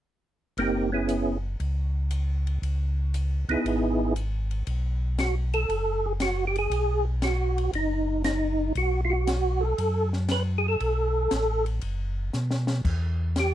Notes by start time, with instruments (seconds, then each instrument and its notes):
0.57 tonewheel organ F#1 A#3 C4 D#4 G4, ride
0.92 tonewheel organ B3 C#4 E4 G#4
1.09 hi-hat pedal, ride
1.60 tonewheel organ C#2, ride
2.11 hi-hat pedal, ride
2.47 ride
2.62 tonewheel organ C#2, ride
3.14 hi-hat pedal, ride
3.48 tonewheel organ C#2 B3 D#4 E4 G#4, ride
3.64 tonewheel organ G#1, ride
4.16 hi-hat pedal, ride
4.51 ride
4.67 tonewheel organ B1, ride
5.18 tonewheel organ F#4, snare, hi-hat pedal, ride
5.53 tonewheel organ A4, ride
5.69 tonewheel organ F#1, ride
6.06 tonewheel organ G#4
6.20 tonewheel organ F#4, snare, hi-hat pedal, ride
6.47 tonewheel organ G4
6.56 tonewheel organ G#4, ride
6.70 tonewheel organ B1, ride
7.22 tonewheel organ F#4, snare, hi-hat pedal, ride
7.58 ride
7.73 tonewheel organ F#1 D#4, ride
8.24 tonewheel organ D#4, snare, hi-hat pedal, ride
8.75 tonewheel organ B1 F#4, ride
9.05 tonewheel organ F4
9.10 tonewheel organ F#4
9.27 snare, hi-hat pedal, ride
9.61 tonewheel organ A4
9.78 tonewheel organ F#2, ride
10.13 snare
10.29 tonewheel organ B4, snare, hi-hat pedal, ride
10.58 tonewheel organ G#4
10.68 tonewheel organ A4
10.80 tonewheel organ B1, ride
11.31 tonewheel organ A1, snare, hi-hat pedal, ride
11.66 ride
11.81 tonewheel organ F#1, ride
12.33 tonewheel organ B2, snare, hi-hat pedal
12.51 snare
12.67 snare
12.84 tonewheel organ E2, kick, crash
13.36 tonewheel organ G4, snare, hi-hat pedal, ride